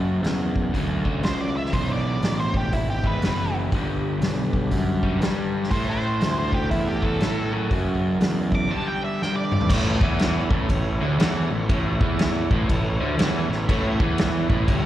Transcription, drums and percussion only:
0.24 snare loud
0.24 open hi-hat soft
0.56 kick medium
0.74 kick medium
0.74 open hi-hat soft
1.05 kick medium
1.23 snare loud
1.23 open hi-hat soft
1.65 snare soft
1.73 kick medium
1.73 open hi-hat soft
2.22 snare loud
2.22 open hi-hat soft
2.54 kick medium
2.73 kick medium
2.73 open hi-hat soft
3.04 kick medium
3.22 snare loud
3.22 open hi-hat soft
3.72 kick loud
3.72 open hi-hat soft
4.22 snare loud
4.22 open hi-hat soft
4.53 kick medium
4.71 kick medium
4.71 open hi-hat soft
5.03 kick medium
5.22 snare loud
5.22 open hi-hat medium
5.63 snare soft
5.71 kick loud
5.71 open hi-hat soft
6.21 snare loud
6.21 open hi-hat soft
6.52 kick medium
6.71 kick medium
6.71 open hi-hat soft
7.02 kick medium
7.21 snare loud
7.21 open hi-hat soft
7.71 kick loud
7.71 open hi-hat soft
8.21 snare loud
8.21 open hi-hat soft
8.52 kick medium
9.22 snare medium
9.52 mid tom medium
9.61 floor tom medium
9.70 kick loud
9.70 crash loud
9.70 crash medium
10.01 kick loud
10.19 snare loud
10.19 crash medium
10.51 kick loud
10.69 kick medium
10.69 crash medium
11.20 snare loud
11.20 crash medium
11.69 kick loud
11.69 crash medium
12.01 kick loud
12.19 snare loud
12.19 crash medium
12.51 kick loud
12.69 kick medium
12.69 crash medium
13.19 snare loud
13.19 crash medium
13.52 snare soft
13.69 kick loud
13.69 crash medium
14.00 kick loud
14.18 snare loud
14.18 crash medium
14.50 kick loud
14.68 kick loud
14.68 crash medium

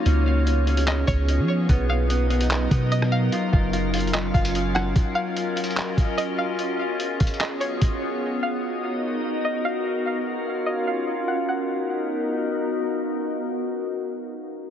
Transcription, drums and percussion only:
0.06 closed hi-hat medium
0.47 closed hi-hat medium
0.67 closed hi-hat soft
0.77 closed hi-hat medium
0.87 clap loud
0.87 closed hi-hat medium
1.08 kick medium
1.08 closed hi-hat medium
1.28 closed hi-hat medium
1.69 kick loud
1.69 closed hi-hat medium
2.10 closed hi-hat medium
2.30 closed hi-hat soft
2.41 closed hi-hat medium
2.51 clap loud
2.51 closed hi-hat medium
2.71 kick medium
2.71 closed hi-hat medium
2.92 closed hi-hat medium
3.02 cross-stick loud
3.32 closed hi-hat medium
3.53 kick loud
3.73 closed hi-hat medium
3.94 closed hi-hat medium
3.94 open hi-hat medium
4.00 closed hi-hat medium
4.07 closed hi-hat soft
4.14 clap loud
4.14 closed hi-hat medium
4.34 kick medium
4.34 closed hi-hat soft
4.45 closed hi-hat medium
4.55 closed hi-hat medium
4.76 cross-stick loud
4.96 kick loud
4.96 closed hi-hat medium
5.37 closed hi-hat medium
5.57 closed hi-hat medium
5.64 closed hi-hat medium
5.71 closed hi-hat soft
5.77 clap loud
5.77 closed hi-hat medium
5.98 kick medium
5.98 closed hi-hat medium
6.18 closed hi-hat medium
6.59 closed hi-hat medium
7.00 closed hi-hat medium
7.20 kick medium
7.20 closed hi-hat medium
7.27 closed hi-hat medium
7.34 closed hi-hat soft
7.40 clap loud
7.40 closed hi-hat medium
7.61 closed hi-hat medium
7.82 kick medium
7.82 closed hi-hat medium

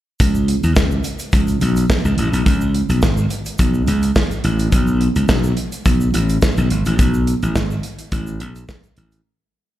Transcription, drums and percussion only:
0.20 kick loud
0.20 closed hi-hat loud
0.20 shaker medium
0.35 shaker medium
0.48 closed hi-hat medium
0.63 closed hi-hat soft
0.63 shaker soft
0.76 kick loud
0.76 snare loud
0.76 shaker medium
0.91 shaker medium
1.04 closed hi-hat medium
1.04 shaker soft
1.19 closed hi-hat medium
1.19 shaker medium
1.32 kick loud
1.32 closed hi-hat loud
1.32 shaker medium
1.47 closed hi-hat soft
1.47 shaker soft
1.61 closed hi-hat medium
1.61 shaker soft
1.76 closed hi-hat medium
1.76 shaker medium
1.90 kick loud
1.90 snare loud
1.90 shaker medium
2.05 shaker soft
2.18 closed hi-hat medium
2.33 closed hi-hat medium
2.33 shaker medium
2.46 kick loud
2.46 closed hi-hat loud
2.46 shaker medium
2.61 shaker medium
2.74 closed hi-hat medium
2.89 closed hi-hat soft
2.89 shaker soft
3.02 kick loud
3.02 snare loud
3.02 shaker medium
3.17 shaker medium
3.30 closed hi-hat medium
3.30 shaker soft
3.45 closed hi-hat medium
3.45 shaker medium
3.58 kick loud
3.58 closed hi-hat loud
3.58 shaker medium
3.74 shaker soft
3.87 closed hi-hat medium
3.87 shaker medium
4.02 closed hi-hat medium
4.02 shaker medium
4.15 kick loud
4.15 snare loud
4.15 shaker medium
4.31 closed hi-hat soft
4.31 shaker soft
4.44 closed hi-hat medium
4.59 closed hi-hat medium
4.59 shaker medium
4.72 kick loud
4.72 closed hi-hat loud
4.72 shaker medium
4.87 shaker medium
5.01 closed hi-hat medium
5.16 closed hi-hat soft
5.16 shaker soft
5.29 kick loud
5.29 snare loud
5.29 shaker medium
5.44 shaker medium
5.57 closed hi-hat medium
5.57 shaker soft
5.72 closed hi-hat medium
5.72 shaker medium
5.85 kick loud
5.85 closed hi-hat loud
5.85 shaker medium
6.01 shaker soft
6.14 closed hi-hat medium
6.14 shaker medium
6.29 closed hi-hat medium
6.29 shaker medium
6.42 kick loud
6.42 snare loud
6.42 shaker medium
6.57 closed hi-hat soft
6.57 shaker soft
6.70 closed hi-hat medium
6.85 closed hi-hat medium
6.85 shaker medium
6.99 kick loud
6.99 closed hi-hat loud
6.99 shaker medium
7.14 shaker medium
7.27 closed hi-hat medium
7.27 shaker soft
7.43 closed hi-hat soft
7.43 shaker soft
7.56 kick loud
7.56 snare loud
7.56 shaker medium
7.71 shaker soft
7.83 closed hi-hat medium
7.83 shaker soft
7.99 closed hi-hat medium
7.99 shaker medium
8.12 kick loud
8.12 closed hi-hat medium
8.12 shaker medium
8.27 shaker soft
8.40 closed hi-hat medium
8.40 shaker soft
8.56 closed hi-hat medium
8.56 shaker medium
8.68 kick loud
8.68 snare medium
8.68 shaker medium
8.84 closed hi-hat soft
8.84 shaker soft
8.96 closed hi-hat medium
8.96 shaker medium
9.12 closed hi-hat medium
9.12 shaker medium

